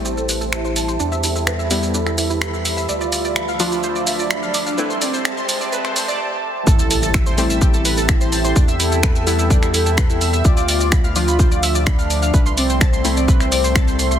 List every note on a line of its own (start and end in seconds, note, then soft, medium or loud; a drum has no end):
0.00 0.98 A1 medium
0.00 0.99 G3 medium
0.00 0.98 A3 medium
0.00 0.99 C4 loud
0.00 0.43 E4 loud
0.00 2.85 G4 medium
0.00 0.98 C5 medium
0.00 6.63 E5 medium
0.00 0.98 A5 medium
0.00 riser medium
0.05 0.10 G4 medium
0.05 shaker soft
0.17 0.24 A4 medium
0.17 shaker soft
0.29 0.33 B4 medium
0.29 open hi-hat loud
0.29 shaker medium
0.41 0.48 A4 medium
0.41 shaker soft
0.52 1.14 E4 loud
0.52 0.57 E5 medium
0.52 finger snap loud
0.52 shaker soft
0.65 0.72 C5 medium
0.65 shaker soft
0.76 0.84 A5 medium
0.76 open hi-hat loud
0.76 shaker medium
0.88 0.93 C5 medium
0.88 shaker soft
1.00 2.87 E2 medium
1.00 1.04 D4 medium
1.00 2.87 B4 medium
1.00 2.87 B5 medium
1.00 shaker soft
1.12 1.19 E5 medium
1.12 shaker soft
1.23 1.28 E4 medium
1.23 2.80 A4 loud
1.23 open hi-hat loud
1.23 shaker medium
1.36 1.43 E4 medium
1.36 shaker soft
1.47 1.52 B4 medium
1.47 finger snap loud
1.47 shaker soft
1.59 1.66 E5 medium
1.59 shaker soft
1.71 2.88 G3 medium
1.71 2.87 B3 medium
1.71 2.87 E4 medium
1.71 1.78 E5 medium
1.71 open hi-hat loud
1.71 shaker medium
1.83 1.87 E4 medium
1.83 shaker soft
1.94 1.99 D4 medium
1.94 shaker soft
2.07 2.11 E4 medium
2.07 finger snap soft
2.07 shaker soft
2.18 2.22 E4 medium
2.18 open hi-hat loud
2.18 shaker medium
2.30 2.37 E4 medium
2.30 shaker soft
2.41 2.46 B4 medium
2.41 finger snap loud
2.41 shaker soft
2.54 2.61 E4 medium
2.54 shaker soft
2.65 2.73 E5 medium
2.65 open hi-hat loud
2.65 shaker medium
2.77 2.88 E5 medium
2.77 shaker soft
2.89 4.76 D2 medium
2.89 4.76 F3 medium
2.89 3.51 F4 loud
2.89 2.93 D5 medium
2.89 4.76 D5 medium
2.89 4.76 A5 medium
2.89 shaker soft
3.01 3.08 D5 medium
3.01 shaker soft
3.12 3.17 D5 medium
3.12 open hi-hat loud
3.12 shaker medium
3.25 3.32 D5 medium
3.25 shaker soft
3.36 3.41 B5 medium
3.36 finger snap loud
3.36 shaker soft
3.48 3.55 F5 medium
3.48 shaker soft
3.60 4.77 F3 medium
3.60 4.77 D4 medium
3.60 4.76 F4 loud
3.60 4.21 F4 loud
3.60 3.67 D6 medium
3.60 open hi-hat loud
3.60 shaker medium
3.72 3.82 B5 medium
3.72 shaker soft
3.83 3.88 C5 medium
3.83 shaker soft
3.96 4.03 D5 medium
3.96 shaker soft
4.07 4.12 E5 medium
4.07 open hi-hat loud
4.07 shaker medium
4.19 4.26 D5 medium
4.19 shaker soft
4.30 4.92 D4 loud
4.30 4.35 B5 medium
4.30 finger snap loud
4.30 shaker soft
4.43 4.50 F5 medium
4.43 shaker soft
4.54 4.62 D6 medium
4.54 open hi-hat loud
4.54 shaker medium
4.66 4.71 F5 medium
4.66 shaker soft
4.78 6.20 C2 medium
4.78 4.92 A3 medium
4.78 4.92 C4 medium
4.78 4.92 E4 loud
4.78 6.65 G4 medium
4.78 4.82 B4 medium
4.78 6.65 C5 medium
4.78 6.65 A5 medium
4.78 shaker soft
4.90 4.97 C6 medium
4.90 shaker soft
5.01 6.20 C4 loud
5.01 5.06 D5 medium
5.01 open hi-hat loud
5.01 shaker medium
5.14 5.21 C5 medium
5.14 shaker soft
5.25 5.30 A5 medium
5.25 finger snap loud
5.25 shaker soft
5.37 5.44 C6 medium
5.37 shaker soft
5.49 5.56 C6 medium
5.49 open hi-hat loud
5.49 shaker medium
5.61 5.65 D5 medium
5.61 shaker soft
5.72 5.77 B4 medium
5.72 shaker soft
5.85 5.89 C5 medium
5.85 finger snap soft
5.85 shaker soft
5.96 6.03 C5 medium
5.96 open hi-hat loud
5.96 shaker medium
6.08 6.19 D5 loud
6.08 shaker soft
6.67 8.54 A1 medium
6.67 8.54 C4 medium
6.67 7.29 E4 loud
6.67 10.41 G4 medium
6.67 8.54 A4 medium
6.67 6.71 A4 medium
6.67 10.41 E5 medium
6.67 10.41 G5 medium
6.67 6.71 A5 medium
6.67 kick loud
6.67 impact medium
6.67 shaker medium
6.79 6.86 A4 medium
6.79 6.86 A5 medium
6.79 shaker soft
6.91 6.95 A4 medium
6.91 6.95 A5 medium
6.91 open hi-hat loud
6.91 shaker medium
7.03 7.10 A4 medium
7.03 7.10 A5 medium
7.03 shaker soft
7.14 7.19 E5 medium
7.14 7.19 E6 medium
7.14 finger snap loud
7.14 kick loud
7.14 shaker medium
7.26 7.33 C5 medium
7.26 7.33 C6 medium
7.26 shaker soft
7.38 8.55 G3 medium
7.38 8.55 A3 medium
7.38 8.55 C4 loud
7.38 7.99 E4 loud
7.38 7.45 A5 medium
7.38 7.45 A6 medium
7.38 open hi-hat medium
7.38 shaker medium
7.50 7.60 E5 medium
7.50 7.60 E6 medium
7.50 shaker soft
7.61 7.66 G4 medium
7.61 7.66 G5 medium
7.61 kick loud
7.61 shaker medium
7.74 7.81 A4 medium
7.74 7.81 A5 medium
7.74 shaker soft
7.85 7.90 B4 medium
7.85 7.89 B5 medium
7.85 open hi-hat loud
7.85 shaker medium
7.97 8.04 A4 medium
7.97 8.04 A5 medium
7.97 shaker soft
8.09 8.70 E4 loud
8.09 8.13 E5 medium
8.09 8.13 E6 medium
8.09 finger snap loud
8.09 kick loud
8.09 shaker medium
8.21 8.28 C5 medium
8.21 8.28 C6 medium
8.21 shaker soft
8.32 8.40 A5 medium
8.32 8.40 A6 medium
8.32 open hi-hat medium
8.32 shaker medium
8.45 8.49 C5 medium
8.45 8.49 C6 medium
8.45 shaker soft
8.56 10.43 E2 medium
8.56 10.43 B3 medium
8.56 8.60 D4 medium
8.56 8.60 D5 medium
8.56 kick loud
8.56 shaker medium
8.68 8.75 E5 medium
8.68 8.75 E6 medium
8.68 shaker soft
8.80 8.84 E4 medium
8.80 10.36 A4 loud
8.80 8.84 E5 medium
8.80 open hi-hat loud
8.80 shaker medium
8.92 8.99 E4 medium
8.92 8.99 E5 medium
8.92 shaker soft
9.03 9.08 B4 medium
9.03 9.08 B5 medium
9.03 finger snap loud
9.03 kick loud
9.03 shaker medium
9.15 9.22 E5 medium
9.15 9.22 E6 medium
9.15 shaker soft
9.27 10.43 G3 medium
9.27 10.43 B3 medium
9.27 10.43 E4 medium
9.27 9.34 E5 medium
9.27 9.34 E6 medium
9.27 open hi-hat loud
9.27 shaker medium
9.39 9.43 E4 medium
9.39 9.43 E5 medium
9.39 shaker soft
9.50 9.55 D4 medium
9.50 9.55 D5 medium
9.50 kick loud
9.50 shaker medium
9.62 9.67 E4 medium
9.62 9.67 E5 medium
9.62 finger snap soft
9.62 shaker soft
9.74 9.78 E4 medium
9.74 9.78 E5 medium
9.74 open hi-hat loud
9.74 shaker medium
9.86 9.93 E4 medium
9.86 9.93 E5 medium
9.86 shaker soft
9.97 10.02 B4 medium
9.97 finger snap loud
9.97 kick loud
9.97 shaker medium
10.10 10.17 E4 medium
10.10 10.17 E5 medium
10.10 shaker soft
10.21 10.28 E5 medium
10.21 10.28 E6 medium
10.21 open hi-hat loud
10.21 shaker medium
10.33 10.44 E5 medium
10.33 10.44 E6 medium
10.33 shaker soft
10.45 12.32 D2 medium
10.45 12.32 F3 medium
10.45 12.32 A3 medium
10.45 11.06 F4 loud
10.45 12.32 D5 medium
10.45 10.49 D5 medium
10.45 12.32 E5 medium
10.45 10.49 D6 medium
10.45 kick loud
10.45 shaker medium
10.57 10.64 D5 medium
10.57 10.64 D6 medium
10.57 shaker soft
10.68 10.73 D5 medium
10.68 10.73 D6 medium
10.68 open hi-hat loud
10.68 shaker medium
10.81 10.88 D5 medium
10.81 10.88 D6 medium
10.81 shaker soft
10.92 10.96 B5 medium
10.92 finger snap loud
10.92 kick loud
10.92 shaker medium
11.04 11.11 F5 medium
11.04 11.11 F6 medium
11.04 shaker soft
11.16 12.32 F3 medium
11.16 12.32 D4 medium
11.16 12.32 F4 loud
11.16 11.77 F4 loud
11.16 11.23 D6 medium
11.16 open hi-hat loud
11.16 shaker medium
11.28 11.38 B5 medium
11.28 shaker soft
11.39 11.44 C5 medium
11.39 11.44 C6 medium
11.39 kick loud
11.39 shaker medium
11.52 11.58 D5 medium
11.52 11.58 D6 medium
11.52 shaker soft
11.63 11.67 E5 medium
11.63 11.67 E6 medium
11.63 open hi-hat loud
11.63 shaker medium
11.75 11.82 D5 medium
11.75 11.82 D6 medium
11.75 shaker soft
11.87 12.48 D4 loud
11.87 11.91 B5 medium
11.87 finger snap loud
11.87 kick loud
11.87 shaker medium
11.99 12.06 F5 medium
11.99 12.06 F6 medium
11.99 shaker soft
12.10 12.18 D6 medium
12.10 open hi-hat medium
12.10 shaker medium
12.22 12.27 F5 medium
12.22 12.27 F6 medium
12.22 shaker soft
12.34 14.19 C2 medium
12.34 14.19 A3 medium
12.34 14.19 G4 medium
12.34 12.38 B4 medium
12.34 14.19 C5 medium
12.34 14.19 E5 medium
12.34 12.38 B5 medium
12.34 kick loud
12.34 shaker medium
12.46 12.53 C6 medium
12.46 shaker soft
12.57 14.14 C4 loud
12.57 12.62 D5 medium
12.57 12.62 D6 medium
12.57 open hi-hat loud
12.57 shaker medium
12.70 12.77 C5 medium
12.70 12.77 C6 medium
12.70 shaker soft
12.81 12.85 A5 medium
12.81 12.86 A6 medium
12.81 finger snap loud
12.81 kick loud
12.81 shaker medium
12.93 13.00 C6 medium
12.93 shaker soft
13.05 14.19 A3 medium
13.05 14.19 C4 medium
13.05 14.19 E4 medium
13.05 13.12 C6 medium
13.05 open hi-hat medium
13.05 shaker medium
13.17 13.21 D5 medium
13.17 13.21 D6 medium
13.17 shaker soft
13.28 13.33 B4 medium
13.28 13.33 B5 medium
13.28 kick loud
13.28 shaker medium
13.40 13.45 C5 medium
13.40 13.45 C6 medium
13.40 finger snap soft
13.40 shaker soft
13.52 13.56 D5 medium
13.52 13.56 D6 medium
13.52 open hi-hat loud
13.52 shaker medium
13.64 13.71 C5 medium
13.64 13.71 C6 medium
13.64 shaker soft
13.75 13.80 A5 medium
13.75 13.80 A6 medium
13.75 finger snap loud
13.75 kick loud
13.75 shaker medium
13.88 13.95 C5 medium
13.88 13.95 C6 medium
13.88 shaker soft
13.99 14.06 C6 medium
13.99 open hi-hat loud
13.99 shaker medium
14.11 14.19 C6 medium
14.11 shaker soft